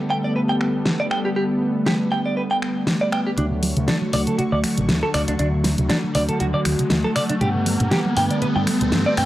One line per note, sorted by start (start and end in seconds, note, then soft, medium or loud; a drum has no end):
0.00 3.35 D3 medium
0.00 3.34 G3 medium
0.00 3.35 G3 medium
0.00 3.35 A3 medium
0.00 3.34 B3 medium
0.00 3.35 B3 medium
0.00 3.34 A4 medium
0.10 0.17 G5 medium
0.24 0.33 D5 medium
0.36 0.40 B4 medium
0.49 0.55 G5 medium
0.61 finger snap medium
0.86 snare loud
1.00 1.05 D5 medium
1.11 1.18 G5 medium
1.11 finger snap medium
1.25 1.28 G4 medium
1.36 1.43 G4 medium
1.86 1.94 G4 medium
1.86 snare loud
2.12 2.19 G5 medium
2.26 2.34 D5 medium
2.37 2.41 B4 medium
2.51 2.57 G5 medium
2.62 finger snap medium
2.87 snare loud
3.01 3.07 D5 medium
3.12 3.20 G5 medium
3.12 finger snap medium
3.27 3.30 G4 medium
3.37 3.73 D2 medium
3.37 3.43 C#3 medium
3.37 4.10 D3 medium
3.37 7.37 D3 medium
3.37 4.10 F#3 medium
3.37 4.11 A3 medium
3.37 3.45 D4 medium
3.37 4.11 F#4 medium
3.37 4.11 C#5 medium
3.37 7.37 C#6 medium
3.37 closed hi-hat medium
3.37 riser medium
3.51 3.54 D3 medium
3.63 3.70 F#3 loud
3.63 open hi-hat loud
3.77 3.86 D2 loud
3.77 3.83 C#3 loud
3.77 closed hi-hat medium
3.88 3.96 D3 medium
3.88 3.95 D4 medium
3.88 snare loud
3.88 closed hi-hat medium
4.02 4.04 F#3 medium
4.12 4.25 D2 medium
4.12 4.18 C#3 medium
4.12 5.36 D3 medium
4.12 5.36 F#3 medium
4.12 5.37 A3 medium
4.12 5.37 F#4 loud
4.12 4.20 D5 medium
4.12 open hi-hat medium
4.27 4.31 D3 medium
4.27 4.36 A4 medium
4.27 closed hi-hat medium
4.38 4.43 C#3 medium
4.38 4.43 F#4 medium
4.38 muted fingered electric bass stroke soft
4.38 closed hi-hat soft
4.52 4.62 D2 medium
4.52 4.55 D3 medium
4.52 4.58 D5 medium
4.64 4.71 F#3 loud
4.64 finger snap medium
4.64 open hi-hat loud
4.78 4.87 A1 medium
4.78 4.84 C#3 loud
4.78 closed hi-hat medium
4.89 5.01 D2 medium
4.89 4.96 D3 medium
4.89 snare loud
4.89 closed hi-hat medium
5.03 5.05 F#3 medium
5.03 5.09 A4 medium
5.14 5.26 D2 medium
5.14 5.19 C#3 medium
5.14 5.21 D5 loud
5.14 finger snap medium
5.14 open hi-hat loud
5.28 5.38 D2 medium
5.28 5.32 D3 medium
5.28 5.32 D4 medium
5.28 closed hi-hat medium
5.39 5.75 D2 loud
5.39 5.44 C#3 medium
5.39 6.12 D3 medium
5.39 6.12 F#3 medium
5.39 6.13 A3 medium
5.39 5.46 D4 medium
5.39 6.13 F#4 medium
5.39 closed hi-hat soft
5.53 5.56 D3 medium
5.64 5.72 F#3 loud
5.64 snare medium
5.64 open hi-hat loud
5.78 5.88 D2 loud
5.78 5.85 C#3 loud
5.78 closed hi-hat medium
5.89 5.97 D3 medium
5.89 5.97 D4 loud
5.89 snare loud
5.89 closed hi-hat medium
6.04 6.06 F#3 medium
6.14 6.27 D2 medium
6.14 6.20 C#3 medium
6.14 7.38 D3 medium
6.14 7.38 F#3 medium
6.14 7.38 A3 medium
6.14 7.39 F#4 loud
6.14 6.22 D5 medium
6.14 open hi-hat loud
6.29 6.33 D3 medium
6.29 6.37 A4 medium
6.29 closed hi-hat medium
6.40 6.52 D2 medium
6.40 6.45 C#3 medium
6.40 6.45 F#4 medium
6.40 closed hi-hat soft
6.54 6.57 D3 medium
6.54 6.60 D5 medium
6.65 6.77 D2 medium
6.65 6.73 F#3 loud
6.65 finger snap medium
6.65 open hi-hat loud
6.79 6.85 C#3 loud
6.79 muted fingered electric bass stroke soft
6.79 closed hi-hat medium
6.90 7.02 D2 medium
6.90 6.98 D3 medium
6.90 snare loud
6.90 closed hi-hat soft
7.04 7.07 F#3 medium
7.04 7.10 A4 medium
7.16 7.21 C#3 medium
7.16 7.23 D5 loud
7.16 finger snap medium
7.16 open hi-hat loud
7.29 7.34 D3 medium
7.29 7.33 D4 medium
7.29 closed hi-hat medium
7.40 7.77 G2 medium
7.40 7.46 B2 medium
7.40 8.14 D3 medium
7.40 8.14 G3 medium
7.40 8.14 A3 medium
7.40 9.25 B3 medium
7.40 8.14 B3 medium
7.40 7.48 G4 medium
7.40 9.25 A4 medium
7.40 8.15 F#5 medium
7.40 closed hi-hat soft
7.55 7.58 D3 medium
7.66 7.74 F#3 loud
7.66 open hi-hat loud
7.80 7.90 G2 loud
7.80 7.86 B2 loud
7.80 closed hi-hat medium
7.91 7.99 D3 medium
7.91 7.99 G4 medium
7.91 snare loud
7.91 closed hi-hat soft
8.05 8.08 F#3 medium
8.16 8.28 G2 medium
8.16 8.22 B2 medium
8.16 9.25 D3 medium
8.16 9.25 G3 medium
8.16 9.25 A3 medium
8.16 9.25 B3 medium
8.16 8.24 G5 loud
8.16 open hi-hat loud
8.30 8.35 D3 medium
8.30 8.39 D5 medium
8.30 closed hi-hat medium
8.42 8.47 B2 medium
8.42 8.46 B4 medium
8.42 muted fingered electric bass stroke soft
8.42 closed hi-hat soft
8.56 8.65 G2 medium
8.56 8.58 D3 medium
8.56 8.62 G5 medium
8.67 8.74 F#3 medium
8.67 finger snap medium
8.67 open hi-hat loud
8.80 8.91 D2 medium
8.80 8.87 B2 loud
8.80 closed hi-hat medium
8.92 9.04 G2 medium
8.92 9.00 D3 medium
8.92 snare loud
8.92 closed hi-hat soft
9.06 9.09 F#3 medium
9.06 9.12 D5 medium
9.17 9.25 G2 loud
9.17 9.22 B2 medium
9.17 9.25 G5 loud
9.17 finger snap medium
9.17 open hi-hat loud